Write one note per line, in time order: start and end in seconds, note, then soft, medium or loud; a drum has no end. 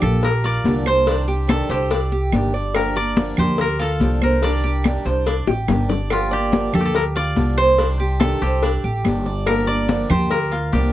0.00 0.60 A#1 medium
0.00 0.23 D4 soft
0.00 1.59 F4 loud
0.00 1.65 G4 loud
0.00 0.42 G4 medium
0.00 0.22 G4 soft
0.00 0.30 A4 medium
0.00 high conga soft
0.00 low conga medium
0.00 claves medium
0.05 0.23 A#3 soft
0.23 1.56 A#4 loud
0.23 muted steel-string acoustic guitar stroke medium
0.23 cowbell loud
0.23 high conga soft
0.44 0.85 F4 medium
0.44 2.05 D5 loud
0.44 cowbell medium
0.44 high conga soft
0.64 1.63 C2 medium
0.64 0.85 D3 medium
0.64 0.85 F3 medium
0.64 0.86 A#3 medium
0.64 0.86 D4 medium
0.64 0.85 G4 medium
0.64 cowbell medium
0.64 high conga medium
0.86 1.07 A#3 soft
0.86 1.07 D4 medium
0.86 1.06 G4 medium
0.86 1.06 C5 medium
0.86 2.59 C5 loud
0.86 claves medium
1.06 1.27 C3 medium
1.06 1.27 D#3 medium
1.06 1.27 G3 medium
1.06 1.27 D4 medium
1.06 1.28 D4 medium
1.06 1.26 G4 medium
1.06 cowbell loud
1.06 high conga soft
1.27 1.48 G3 soft
1.27 1.48 D4 soft
1.27 1.48 G4 medium
1.27 1.69 G4 medium
1.27 high conga soft
1.48 1.68 C3 medium
1.48 1.69 D#3 medium
1.48 1.69 G3 medium
1.48 1.69 D4 medium
1.48 1.68 G4 medium
1.48 2.82 A4 loud
1.48 cowbell medium
1.48 high conga loud
1.48 claves medium
1.69 2.29 C2 medium
1.69 1.90 G3 soft
1.69 1.90 D4 soft
1.69 1.90 G4 medium
1.69 3.75 G4 medium
1.69 1.90 C5 medium
1.69 cowbell medium
1.69 high conga soft
1.90 2.11 D4 medium
1.90 muted steel-string acoustic guitar stroke medium
1.90 cowbell loud
1.90 high conga soft
2.12 2.53 G4 medium
2.12 high conga soft
2.32 3.31 G1 medium
2.32 2.53 C3 medium
2.32 2.53 D#3 medium
2.32 2.53 G3 medium
2.32 2.53 D4 medium
2.32 2.53 G4 medium
2.32 cowbell medium
2.32 high conga medium
2.32 claves medium
2.54 2.75 G3 soft
2.54 2.74 D4 soft
2.54 2.74 G4 soft
2.54 2.74 D5 medium
2.54 high conga soft
2.74 2.95 D3 medium
2.74 2.95 F3 medium
2.74 2.95 A#3 medium
2.74 2.96 D4 medium
2.74 2.95 G4 medium
2.74 2.94 G4 medium
2.74 3.60 A#4 loud
2.74 cowbell loud
2.74 high conga soft
2.74 claves medium
2.96 3.17 A#3 soft
2.96 3.16 D4 soft
2.96 3.16 G4 soft
2.96 3.37 D5 medium
2.96 4.44 D5 loud
2.96 high conga soft
3.17 3.37 D3 medium
3.17 3.37 F3 medium
3.17 3.38 A#3 medium
3.17 3.38 D4 medium
3.17 3.36 G4 medium
3.17 cowbell medium
3.17 high conga loud
3.37 3.96 D2 medium
3.37 3.58 A#3 soft
3.37 3.58 D4 soft
3.37 3.58 G4 medium
3.37 3.79 G4 medium
3.37 5.11 C5 loud
3.37 high conga soft
3.37 low conga medium
3.37 claves medium
3.58 3.87 A#4 loud
3.58 muted steel-string acoustic guitar stroke medium
3.58 cowbell loud
3.58 high conga soft
3.79 4.20 F4 medium
3.79 4.29 A4 medium
3.79 cowbell medium
3.79 high conga soft
4.00 4.99 C2 medium
4.00 4.21 D3 medium
4.00 4.21 F3 medium
4.00 4.21 A#3 medium
4.00 4.22 D4 medium
4.00 4.21 G4 medium
4.00 cowbell medium
4.00 high conga medium
4.22 4.43 A#3 soft
4.22 4.43 D4 soft
4.22 4.42 G4 soft
4.22 6.07 A#4 medium
4.22 4.42 C5 medium
4.22 high conga medium
4.22 claves medium
4.42 4.63 C3 medium
4.42 4.63 D#3 medium
4.42 4.64 G3 medium
4.42 4.63 D4 medium
4.42 4.64 D4 medium
4.42 4.62 G4 medium
4.42 6.04 D5 loud
4.42 cowbell loud
4.42 high conga soft
4.64 4.85 G3 soft
4.64 4.84 D4 soft
4.64 4.84 G4 soft
4.64 5.04 G4 medium
4.64 high conga soft
4.84 5.05 C3 medium
4.84 5.05 D#3 medium
4.84 5.05 G3 medium
4.84 5.06 D4 medium
4.84 5.05 G4 medium
4.84 cowbell medium
4.84 high conga loud
4.84 claves medium
5.05 5.44 C2 medium
5.05 5.26 G3 soft
5.05 5.26 D4 soft
5.05 5.26 G4 soft
5.05 5.26 C5 medium
5.05 cowbell medium
5.05 high conga soft
5.26 5.47 D4 medium
5.26 muted steel-string acoustic guitar stroke medium
5.26 cowbell loud
5.26 high conga soft
5.47 5.67 A1 medium
5.47 5.88 G4 medium
5.47 high bongo medium
5.47 high conga soft
5.68 6.67 G1 medium
5.68 5.89 C3 medium
5.68 5.89 D#3 medium
5.68 5.89 G3 medium
5.68 5.89 D4 medium
5.68 5.88 G4 medium
5.68 cowbell medium
5.68 low bongo medium
5.68 high conga medium
5.68 claves medium
5.89 6.11 G3 soft
5.89 6.10 D4 soft
5.89 6.10 G4 soft
5.89 6.10 D5 medium
5.89 low bongo medium
5.89 high conga soft
6.10 6.31 D3 medium
6.10 6.31 F3 medium
6.10 6.31 A#3 medium
6.10 6.31 D4 medium
6.10 8.31 F4 medium
6.10 6.31 G4 medium
6.10 6.30 G4 medium
6.10 cowbell loud
6.10 high conga soft
6.10 claves medium
6.31 6.52 A#3 soft
6.31 6.52 D4 soft
6.31 6.52 G4 medium
6.31 6.80 G4 loud
6.31 6.72 D5 medium
6.31 high conga soft
6.52 6.73 D3 medium
6.52 6.73 F3 medium
6.52 6.73 A#3 medium
6.52 6.73 D4 medium
6.52 6.72 G4 medium
6.52 cowbell medium
6.52 high conga loud
6.73 7.32 D2 medium
6.73 6.94 A#3 soft
6.73 6.94 D4 soft
6.73 6.93 G4 soft
6.73 7.14 G4 medium
6.73 6.85 A4 medium
6.73 high conga soft
6.73 low conga medium
6.73 claves medium
6.80 8.41 G4 medium
6.85 7.01 A4 medium
6.95 7.01 A#4 loud
6.95 muted steel-string acoustic guitar stroke medium
6.95 cowbell loud
6.95 high conga soft
7.16 7.56 F4 medium
7.16 8.77 D5 loud
7.16 cowbell medium
7.16 high conga soft
7.36 8.35 C2 medium
7.36 7.57 D3 medium
7.36 7.57 F3 medium
7.36 7.57 A#3 medium
7.36 7.57 D4 medium
7.36 7.56 G4 medium
7.36 cowbell medium
7.36 high conga medium
7.57 7.79 A#3 soft
7.57 7.78 D4 soft
7.57 7.78 G4 medium
7.57 9.29 C5 loud
7.57 7.78 C5 medium
7.57 claves medium
7.78 7.99 C3 medium
7.78 7.99 D#3 medium
7.78 7.99 G3 medium
7.78 7.99 D4 medium
7.78 7.98 G4 medium
7.78 cowbell loud
7.78 high conga soft
8.00 8.21 G3 soft
8.00 8.20 D4 soft
8.00 8.20 G4 soft
8.00 8.40 G4 medium
8.00 high conga soft
8.20 8.41 C3 medium
8.20 8.41 D#3 medium
8.20 8.41 G3 medium
8.20 8.42 D4 medium
8.20 8.41 G4 medium
8.20 9.53 A4 loud
8.20 cowbell medium
8.20 high conga loud
8.20 claves medium
8.42 8.81 C2 medium
8.42 8.63 G3 soft
8.42 8.63 D4 medium
8.42 10.46 G4 loud
8.42 8.62 G4 medium
8.42 8.62 C5 medium
8.42 cowbell medium
8.42 high conga soft
8.63 8.83 D4 medium
8.63 muted steel-string acoustic guitar stroke medium
8.63 cowbell loud
8.63 high conga soft
8.84 9.03 A1 medium
8.84 9.25 G4 medium
8.84 high conga soft
9.04 10.04 G1 medium
9.04 9.25 C3 medium
9.04 9.26 D#3 medium
9.04 9.26 G3 medium
9.04 9.26 D4 medium
9.04 9.25 G4 medium
9.04 cowbell medium
9.04 high conga medium
9.04 claves medium
9.26 9.47 G3 soft
9.26 9.47 D4 soft
9.26 9.46 G4 medium
9.26 9.46 D5 medium
9.26 high conga soft
9.46 9.67 D3 medium
9.46 9.67 F3 medium
9.46 9.67 A#3 medium
9.46 9.68 D4 medium
9.46 9.67 G4 medium
9.46 10.30 A#4 loud
9.46 cowbell loud
9.46 high conga soft
9.46 claves medium
9.67 9.89 A#3 soft
9.67 9.89 D4 soft
9.67 9.88 G4 soft
9.67 10.93 D5 loud
9.67 10.09 D5 medium
9.67 high conga soft
9.88 10.09 D3 medium
9.88 10.09 F3 medium
9.88 10.10 A#3 medium
9.88 10.10 D4 medium
9.88 10.09 G4 medium
9.88 cowbell medium
9.88 high conga loud
10.10 10.69 D2 medium
10.10 10.30 A#3 soft
10.10 10.31 D4 soft
10.10 10.50 G4 medium
10.10 10.30 G4 soft
10.10 10.93 C5 loud
10.10 high conga soft
10.10 low conga medium
10.10 claves medium
10.31 10.93 A#4 loud
10.31 muted steel-string acoustic guitar stroke medium
10.31 cowbell loud
10.31 high conga soft
10.52 10.93 F4 medium
10.52 cowbell medium
10.52 high conga soft
10.73 10.93 C2 medium
10.73 10.93 D3 medium
10.73 10.93 F3 medium
10.73 10.93 A#3 medium
10.73 10.93 D4 medium
10.73 10.93 G4 medium
10.73 10.92 G4 medium
10.73 cowbell medium
10.73 high conga medium